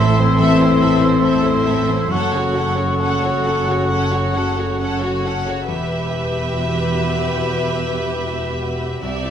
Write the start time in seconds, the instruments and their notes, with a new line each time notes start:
Already playing: grand piano A1 E2 A4 C5, double bass section A1, cello section A2, french horn section E3 C4, clarinet A4, oboe E5, flute C6
0.00 viola section C4, grand piano E4, violin section A4 E5
0.18 grand piano E2, viola section E4, violin section C5
0.38 grand piano A1, viola section C4, violin section A4 E5
0.60 grand piano E4, viola section E4, violin section C5
0.79 grand piano E2, viola section C4, violin section A4 E5
1.00 viola section E4, grand piano A4, violin section C5
1.22 viola section C4, violin section A4 E5, grand piano C5
1.43 viola section E4, grand piano A4, violin section C5
1.66 viola section C4, grand piano E4, violin section A4 E5
1.88 grand piano E2, viola section E4, violin section C5
2.09 double bass section F#1, grand piano F#2, cello section F#2, french horn section A3 C#4, viola section C#4, clarinet A4, violin section A4 F#5, oboe F#5, flute C#6
2.32 grand piano C#3, viola section F#4, violin section C#5
2.36 violin section F#4
2.54 viola section C#4, grand piano F#4, violin section A4 F#5
2.77 viola section F#4, violin section F#4 C#5, grand piano A4
3.00 viola section C#4, violin section A4 F#5, grand piano C#5
3.23 viola section F#4, violin section F#4 C#5, grand piano A4
3.45 viola section C#4, grand piano F#4, violin section A4 F#5
3.67 grand piano C#3, viola section F#4, violin section F#4 C#5
3.88 grand piano F#2, viola section C#4, violin section F#5
3.93 violin section A4
4.12 grand piano F#4, viola section F#4, violin section F#4 C#5
4.34 grand piano C#3, viola section C#4, violin section A4 F#5
4.57 viola section F#4, violin section F#4 C#5, grand piano A4
4.80 viola section C#4, violin section A4 F#5, grand piano C#5
5.02 viola section F#4, violin section F#4 C#5, grand piano A4
5.24 viola section C#4, grand piano F#4, violin section A4 F#5
5.47 grand piano C#3, viola section F#4, violin section F#4 C#5
5.68 double bass section E1, grand piano E2, cello section E2, viola section G4, violin section B4 E5
5.89 grand piano G4
6.10 grand piano E5
6.32 grand piano G4
6.53 grand piano B2
6.73 grand piano G4
6.94 grand piano F#4
7.17 grand piano G4
7.37 grand piano B2
7.58 grand piano G4
7.80 grand piano E5
7.99 grand piano G4
8.22 grand piano B2
8.43 grand piano G4
8.62 grand piano F#4
8.84 grand piano G4
9.03 grand piano C2, double bass section C2, cello section C3, viola section G4, violin section D5 E5
9.25 grand piano E4